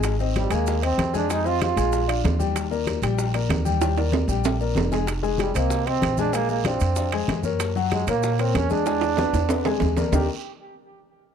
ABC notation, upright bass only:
X:1
M:4/4
L:1/8
Q:1/4=190
K:Eb
V:1 name="Upright bass" clef=bass
A,,,3 E,,3 F,,2- | F,,3 B,,,3 E,,2- | E,,3 B,,,3 E,,2- | E,,3 B,,,3 F,,,2- |
F,,,3 C,,3 B,,,2- | B,,,3 F,,3 _G,,2- | _G,,3 B,,3 _F,,2- | _F,,3 =E,,3 _E,,2 |
E,, z6 z |]